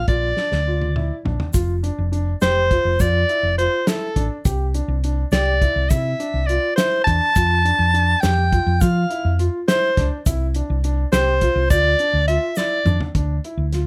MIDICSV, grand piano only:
0, 0, Header, 1, 2, 480
1, 0, Start_track
1, 0, Tempo, 580833
1, 65, Time_signature, 5, 3, 24, 8
1, 11461, End_track
2, 0, Start_track
2, 0, Title_t, "Grand piano"
2, 0, Program_c, 0, 0
2, 68, Note_on_c, 0, 65, 74
2, 222, Note_off_c, 0, 65, 0
2, 313, Note_on_c, 0, 62, 66
2, 466, Note_off_c, 0, 62, 0
2, 553, Note_on_c, 0, 65, 61
2, 707, Note_off_c, 0, 65, 0
2, 793, Note_on_c, 0, 64, 69
2, 947, Note_off_c, 0, 64, 0
2, 1031, Note_on_c, 0, 62, 65
2, 1186, Note_off_c, 0, 62, 0
2, 1267, Note_on_c, 0, 65, 79
2, 1423, Note_off_c, 0, 65, 0
2, 1513, Note_on_c, 0, 62, 72
2, 1668, Note_off_c, 0, 62, 0
2, 1751, Note_on_c, 0, 62, 72
2, 1907, Note_off_c, 0, 62, 0
2, 1996, Note_on_c, 0, 67, 70
2, 2151, Note_off_c, 0, 67, 0
2, 2239, Note_on_c, 0, 65, 69
2, 2393, Note_off_c, 0, 65, 0
2, 2479, Note_on_c, 0, 65, 83
2, 2633, Note_off_c, 0, 65, 0
2, 2721, Note_on_c, 0, 64, 68
2, 2875, Note_off_c, 0, 64, 0
2, 2961, Note_on_c, 0, 65, 73
2, 3115, Note_off_c, 0, 65, 0
2, 3201, Note_on_c, 0, 64, 66
2, 3355, Note_off_c, 0, 64, 0
2, 3442, Note_on_c, 0, 62, 77
2, 3596, Note_off_c, 0, 62, 0
2, 3679, Note_on_c, 0, 67, 76
2, 3834, Note_off_c, 0, 67, 0
2, 3920, Note_on_c, 0, 62, 68
2, 4075, Note_off_c, 0, 62, 0
2, 4166, Note_on_c, 0, 62, 69
2, 4319, Note_off_c, 0, 62, 0
2, 4405, Note_on_c, 0, 67, 76
2, 4559, Note_off_c, 0, 67, 0
2, 4641, Note_on_c, 0, 64, 66
2, 4796, Note_off_c, 0, 64, 0
2, 4882, Note_on_c, 0, 64, 78
2, 5037, Note_off_c, 0, 64, 0
2, 5120, Note_on_c, 0, 62, 76
2, 5275, Note_off_c, 0, 62, 0
2, 5362, Note_on_c, 0, 65, 70
2, 5516, Note_off_c, 0, 65, 0
2, 5600, Note_on_c, 0, 64, 72
2, 5755, Note_off_c, 0, 64, 0
2, 5842, Note_on_c, 0, 62, 74
2, 5996, Note_off_c, 0, 62, 0
2, 6082, Note_on_c, 0, 65, 78
2, 6236, Note_off_c, 0, 65, 0
2, 6321, Note_on_c, 0, 62, 70
2, 6475, Note_off_c, 0, 62, 0
2, 6557, Note_on_c, 0, 62, 74
2, 6713, Note_off_c, 0, 62, 0
2, 6798, Note_on_c, 0, 67, 71
2, 6953, Note_off_c, 0, 67, 0
2, 7040, Note_on_c, 0, 65, 68
2, 7195, Note_off_c, 0, 65, 0
2, 7280, Note_on_c, 0, 65, 87
2, 7435, Note_off_c, 0, 65, 0
2, 7521, Note_on_c, 0, 64, 72
2, 7675, Note_off_c, 0, 64, 0
2, 7762, Note_on_c, 0, 65, 77
2, 7915, Note_off_c, 0, 65, 0
2, 8001, Note_on_c, 0, 64, 73
2, 8154, Note_off_c, 0, 64, 0
2, 8239, Note_on_c, 0, 62, 78
2, 8393, Note_off_c, 0, 62, 0
2, 8480, Note_on_c, 0, 64, 81
2, 8633, Note_off_c, 0, 64, 0
2, 8724, Note_on_c, 0, 62, 69
2, 8875, Note_off_c, 0, 62, 0
2, 8961, Note_on_c, 0, 62, 72
2, 9113, Note_off_c, 0, 62, 0
2, 9200, Note_on_c, 0, 67, 73
2, 9353, Note_off_c, 0, 67, 0
2, 9437, Note_on_c, 0, 65, 77
2, 9590, Note_off_c, 0, 65, 0
2, 9677, Note_on_c, 0, 65, 76
2, 9830, Note_off_c, 0, 65, 0
2, 9914, Note_on_c, 0, 62, 77
2, 10067, Note_off_c, 0, 62, 0
2, 10151, Note_on_c, 0, 65, 67
2, 10306, Note_off_c, 0, 65, 0
2, 10397, Note_on_c, 0, 64, 77
2, 10549, Note_off_c, 0, 64, 0
2, 10631, Note_on_c, 0, 62, 76
2, 10785, Note_off_c, 0, 62, 0
2, 10871, Note_on_c, 0, 62, 75
2, 11024, Note_off_c, 0, 62, 0
2, 11112, Note_on_c, 0, 64, 68
2, 11265, Note_off_c, 0, 64, 0
2, 11349, Note_on_c, 0, 65, 68
2, 11461, Note_off_c, 0, 65, 0
2, 11461, End_track
0, 0, End_of_file